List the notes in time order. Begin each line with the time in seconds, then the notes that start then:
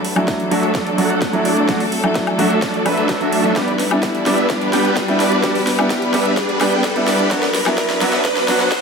Already playing: F#3 A3 D4 A4, riser
0.05 open hi-hat
0.16 F#3 A3 D4 E4, closed hi-hat, high woodblock
0.28 kick, snare, closed hi-hat
0.40 closed hi-hat
0.51 F#3 A3 D4 F#4 A4 E5, open hi-hat
0.63 closed hi-hat
0.75 F#3 A3 D4 A4 D5, kick, snare, closed hi-hat
0.87 closed hi-hat
0.98 F#3 A3 D4 F#4 A4 F#5, open hi-hat
1.10 closed hi-hat
1.22 kick, snare, closed hi-hat
1.33 F#3 A3 D4 E4, closed hi-hat
1.45 F#3 A3 D4 A4 D5, open hi-hat
1.57 closed hi-hat
1.68 F#3 A3 D4 F#4 A4 D5, kick, snare, closed hi-hat
1.80 open hi-hat
1.92 open hi-hat
2.03 F#3 A3 D4 E4, closed hi-hat, high woodblock
2.15 kick, snare, closed hi-hat
2.27 closed hi-hat, high woodblock
2.38 F#3 A3 D4 F#4 A4 E5, open hi-hat
2.51 closed hi-hat
2.62 F#3 A3 D4 A4 D5, kick, snare, closed hi-hat
2.74 closed hi-hat
2.85 F#3 A3 D4 A4 B4 E5, open hi-hat, high woodblock
2.97 F#3 A3 D4 A4 E5, closed hi-hat
3.09 kick, snare, closed hi-hat
3.20 F#3 A3 D4 F#4, closed hi-hat
3.32 open hi-hat
3.44 F#3 A3 D4 E4, closed hi-hat
3.55 G3 B3 D4 G4 B4 D5, kick, snare, closed hi-hat
3.68 closed hi-hat
3.79 snare, open hi-hat
3.91 G3 B3 D4 E4, closed hi-hat, high woodblock
4.03 kick, snare, closed hi-hat
4.15 closed hi-hat
4.26 G3 B3 D4 G4 B4 E5, snare, open hi-hat
4.38 closed hi-hat
4.50 G3 B3 D4 B4 D5, kick, snare, closed hi-hat
4.61 closed hi-hat
4.72 G3 B3 D4 G4 B4 G5, snare, open hi-hat
4.85 closed hi-hat
4.97 kick, snare, closed hi-hat
5.08 G3 B3 D4 E4, closed hi-hat
5.20 G3 B3 D4 B4 D5, snare, open hi-hat
5.32 closed hi-hat
5.43 G3 B3 D4 G4 B4 D5, kick, snare, closed hi-hat
5.55 open hi-hat
5.67 snare, open hi-hat
5.78 G3 B3 D4 E4, closed hi-hat, high woodblock
5.90 kick, snare, closed hi-hat
6.02 closed hi-hat
6.13 G3 B3 D4 G4 B4 E5, snare, open hi-hat
6.26 closed hi-hat
6.37 G3 B3 D4 B4 D5, kick, snare, closed hi-hat
6.49 closed hi-hat
6.60 G3 B3 D4 G4 B4 G5, snare, open hi-hat, high woodblock
6.72 closed hi-hat
6.84 kick, snare, closed hi-hat
6.95 G3 B3 D4 E4, closed hi-hat
7.08 G3 B3 D4 B4 D5, snare, open hi-hat
7.19 closed hi-hat
7.30 F#3 B3 D4 F#4 B4 D5, kick, snare, closed hi-hat
7.43 snare, closed hi-hat
7.54 snare, open hi-hat
7.66 F#3 B3 D4 E4, snare, closed hi-hat, high woodblock
7.78 kick, snare, closed hi-hat
7.90 snare, closed hi-hat
8.01 F#3 B3 D4 F#4 B4 E5, snare, open hi-hat
8.13 snare, closed hi-hat
8.25 F#3 B3 D4 B4 D5, kick, snare, closed hi-hat
8.37 snare, closed hi-hat
8.48 F#3 B3 D4 F#4 B4 F#5, snare, open hi-hat
8.60 snare, closed hi-hat
8.72 kick, snare, closed hi-hat